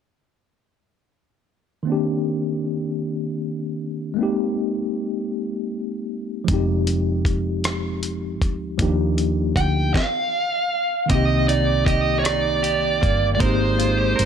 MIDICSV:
0, 0, Header, 1, 6, 480
1, 0, Start_track
1, 0, Key_signature, -3, "minor"
1, 0, Tempo, 769231
1, 1164, Time_signature, 6, 3, 24, 8
1, 8894, End_track
2, 0, Start_track
2, 0, Title_t, "Lead electric guitar"
2, 0, Program_c, 0, 29
2, 5969, Note_on_c, 0, 79, 75
2, 6200, Note_off_c, 0, 79, 0
2, 6203, Note_on_c, 0, 77, 76
2, 6925, Note_on_c, 0, 75, 80
2, 6945, Note_off_c, 0, 77, 0
2, 7147, Note_off_c, 0, 75, 0
2, 7165, Note_on_c, 0, 74, 73
2, 7398, Note_off_c, 0, 74, 0
2, 7400, Note_on_c, 0, 75, 72
2, 7604, Note_off_c, 0, 75, 0
2, 7608, Note_on_c, 0, 73, 55
2, 7635, Note_off_c, 0, 73, 0
2, 7637, Note_on_c, 0, 74, 76
2, 8292, Note_off_c, 0, 74, 0
2, 8329, Note_on_c, 0, 74, 51
2, 8365, Note_off_c, 0, 74, 0
2, 8368, Note_on_c, 0, 72, 64
2, 8894, Note_off_c, 0, 72, 0
2, 8894, End_track
3, 0, Start_track
3, 0, Title_t, "Clean electric guitar"
3, 0, Program_c, 1, 27
3, 6923, Note_on_c, 1, 48, 65
3, 6928, Note_on_c, 1, 67, 52
3, 7167, Note_on_c, 1, 63, 47
3, 7399, Note_off_c, 1, 67, 0
3, 7402, Note_on_c, 1, 67, 52
3, 7637, Note_off_c, 1, 63, 0
3, 7640, Note_on_c, 1, 63, 51
3, 7877, Note_off_c, 1, 67, 0
3, 7879, Note_on_c, 1, 67, 55
3, 8120, Note_on_c, 1, 58, 53
3, 8359, Note_on_c, 1, 56, 69
3, 8361, Note_off_c, 1, 67, 0
3, 8364, Note_off_c, 1, 48, 0
3, 8364, Note_on_c, 1, 70, 62
3, 8600, Note_off_c, 1, 63, 0
3, 8603, Note_on_c, 1, 65, 50
3, 8720, Note_off_c, 1, 65, 0
3, 8720, Note_on_c, 1, 67, 44
3, 8826, Note_off_c, 1, 70, 0
3, 8834, Note_on_c, 1, 70, 55
3, 8894, Note_off_c, 1, 56, 0
3, 8894, Note_off_c, 1, 58, 0
3, 8894, Note_off_c, 1, 67, 0
3, 8894, Note_off_c, 1, 70, 0
3, 8894, End_track
4, 0, Start_track
4, 0, Title_t, "Tine electric piano"
4, 0, Program_c, 2, 4
4, 1141, Note_on_c, 2, 51, 54
4, 1156, Note_on_c, 2, 58, 51
4, 1169, Note_on_c, 2, 60, 53
4, 1185, Note_on_c, 2, 62, 50
4, 1198, Note_on_c, 2, 67, 60
4, 1287, Control_c, 2, 64, 127
4, 2567, Note_off_c, 2, 51, 0
4, 2575, Note_off_c, 2, 58, 0
4, 2581, Note_off_c, 2, 60, 0
4, 2583, Note_on_c, 2, 56, 54
4, 2589, Note_off_c, 2, 62, 0
4, 2596, Note_off_c, 2, 67, 0
4, 2598, Note_on_c, 2, 58, 50
4, 2610, Control_c, 2, 64, 0
4, 2612, Note_on_c, 2, 60, 50
4, 2626, Note_on_c, 2, 63, 49
4, 2639, Note_on_c, 2, 67, 63
4, 2711, Control_c, 2, 64, 127
4, 4008, Note_off_c, 2, 56, 0
4, 4016, Note_off_c, 2, 58, 0
4, 4021, Note_on_c, 2, 53, 54
4, 4023, Note_off_c, 2, 60, 0
4, 4030, Note_off_c, 2, 63, 0
4, 4035, Note_on_c, 2, 56, 50
4, 4037, Note_off_c, 2, 67, 0
4, 4050, Note_on_c, 2, 60, 50
4, 4052, Control_c, 2, 64, 0
4, 4064, Note_on_c, 2, 63, 52
4, 4078, Note_on_c, 2, 67, 64
4, 4147, Control_c, 2, 64, 127
4, 5447, Note_off_c, 2, 53, 0
4, 5454, Note_off_c, 2, 56, 0
4, 5462, Note_off_c, 2, 60, 0
4, 5469, Note_off_c, 2, 63, 0
4, 5476, Note_off_c, 2, 67, 0
4, 5478, Note_on_c, 2, 53, 60
4, 5483, Note_on_c, 2, 58, 54
4, 5493, Control_c, 2, 64, 0
4, 5493, Note_on_c, 2, 62, 53
4, 5498, Note_on_c, 2, 63, 53
4, 5507, Note_on_c, 2, 67, 64
4, 5603, Control_c, 2, 64, 127
4, 6201, Note_off_c, 2, 53, 0
4, 6203, Note_off_c, 2, 58, 0
4, 6208, Note_off_c, 2, 62, 0
4, 6211, Note_off_c, 2, 63, 0
4, 6212, Control_c, 2, 64, 0
4, 6215, Note_off_c, 2, 67, 0
4, 6901, Note_on_c, 2, 51, 51
4, 6914, Note_on_c, 2, 58, 48
4, 6931, Note_on_c, 2, 60, 51
4, 6944, Note_on_c, 2, 63, 48
4, 6959, Note_on_c, 2, 67, 59
4, 7047, Control_c, 2, 64, 127
4, 8327, Note_off_c, 2, 51, 0
4, 8334, Note_off_c, 2, 58, 0
4, 8342, Note_off_c, 2, 60, 0
4, 8342, Note_on_c, 2, 56, 54
4, 8349, Note_off_c, 2, 63, 0
4, 8354, Note_on_c, 2, 58, 51
4, 8356, Note_off_c, 2, 67, 0
4, 8369, Note_on_c, 2, 60, 51
4, 8371, Control_c, 2, 64, 0
4, 8384, Note_on_c, 2, 63, 52
4, 8399, Note_on_c, 2, 67, 58
4, 8485, Control_c, 2, 64, 127
4, 8894, Note_off_c, 2, 56, 0
4, 8894, Note_off_c, 2, 58, 0
4, 8894, Note_off_c, 2, 60, 0
4, 8894, Note_off_c, 2, 63, 0
4, 8894, Note_off_c, 2, 67, 0
4, 8894, End_track
5, 0, Start_track
5, 0, Title_t, "Fingered electric bass"
5, 0, Program_c, 3, 33
5, 4052, Note_on_c, 3, 29, 73
5, 5258, Note_off_c, 3, 29, 0
5, 5258, Note_on_c, 3, 38, 62
5, 5467, Note_off_c, 3, 38, 0
5, 5492, Note_on_c, 3, 39, 79
5, 5943, Note_off_c, 3, 39, 0
5, 5969, Note_on_c, 3, 38, 68
5, 6183, Note_off_c, 3, 38, 0
5, 6930, Note_on_c, 3, 36, 81
5, 8102, Note_off_c, 3, 36, 0
5, 8137, Note_on_c, 3, 31, 70
5, 8347, Note_off_c, 3, 31, 0
5, 8369, Note_on_c, 3, 32, 81
5, 8821, Note_off_c, 3, 32, 0
5, 8857, Note_on_c, 3, 31, 79
5, 8894, Note_off_c, 3, 31, 0
5, 8894, End_track
6, 0, Start_track
6, 0, Title_t, "Drums"
6, 4045, Note_on_c, 9, 36, 89
6, 4045, Note_on_c, 9, 42, 47
6, 4107, Note_off_c, 9, 42, 0
6, 4108, Note_off_c, 9, 36, 0
6, 4288, Note_on_c, 9, 42, 41
6, 4350, Note_off_c, 9, 42, 0
6, 4524, Note_on_c, 9, 36, 66
6, 4531, Note_on_c, 9, 42, 37
6, 4587, Note_off_c, 9, 36, 0
6, 4594, Note_off_c, 9, 42, 0
6, 4768, Note_on_c, 9, 42, 55
6, 4774, Note_on_c, 9, 37, 86
6, 4830, Note_off_c, 9, 42, 0
6, 4837, Note_off_c, 9, 37, 0
6, 5009, Note_on_c, 9, 42, 43
6, 5072, Note_off_c, 9, 42, 0
6, 5251, Note_on_c, 9, 36, 68
6, 5254, Note_on_c, 9, 42, 38
6, 5314, Note_off_c, 9, 36, 0
6, 5316, Note_off_c, 9, 42, 0
6, 5486, Note_on_c, 9, 36, 80
6, 5486, Note_on_c, 9, 42, 51
6, 5548, Note_off_c, 9, 36, 0
6, 5548, Note_off_c, 9, 42, 0
6, 5728, Note_on_c, 9, 42, 41
6, 5791, Note_off_c, 9, 42, 0
6, 5964, Note_on_c, 9, 36, 68
6, 5972, Note_on_c, 9, 42, 40
6, 6026, Note_off_c, 9, 36, 0
6, 6034, Note_off_c, 9, 42, 0
6, 6205, Note_on_c, 9, 36, 79
6, 6212, Note_on_c, 9, 38, 68
6, 6267, Note_off_c, 9, 36, 0
6, 6275, Note_off_c, 9, 38, 0
6, 6924, Note_on_c, 9, 42, 52
6, 6925, Note_on_c, 9, 36, 97
6, 6986, Note_off_c, 9, 42, 0
6, 6987, Note_off_c, 9, 36, 0
6, 7170, Note_on_c, 9, 42, 46
6, 7232, Note_off_c, 9, 42, 0
6, 7404, Note_on_c, 9, 36, 71
6, 7411, Note_on_c, 9, 42, 42
6, 7466, Note_off_c, 9, 36, 0
6, 7473, Note_off_c, 9, 42, 0
6, 7644, Note_on_c, 9, 42, 57
6, 7651, Note_on_c, 9, 37, 88
6, 7707, Note_off_c, 9, 42, 0
6, 7713, Note_off_c, 9, 37, 0
6, 7887, Note_on_c, 9, 42, 47
6, 7949, Note_off_c, 9, 42, 0
6, 8130, Note_on_c, 9, 36, 77
6, 8133, Note_on_c, 9, 42, 38
6, 8192, Note_off_c, 9, 36, 0
6, 8195, Note_off_c, 9, 42, 0
6, 8364, Note_on_c, 9, 36, 93
6, 8364, Note_on_c, 9, 42, 50
6, 8426, Note_off_c, 9, 36, 0
6, 8426, Note_off_c, 9, 42, 0
6, 8609, Note_on_c, 9, 42, 43
6, 8671, Note_off_c, 9, 42, 0
6, 8855, Note_on_c, 9, 42, 45
6, 8894, Note_off_c, 9, 42, 0
6, 8894, End_track
0, 0, End_of_file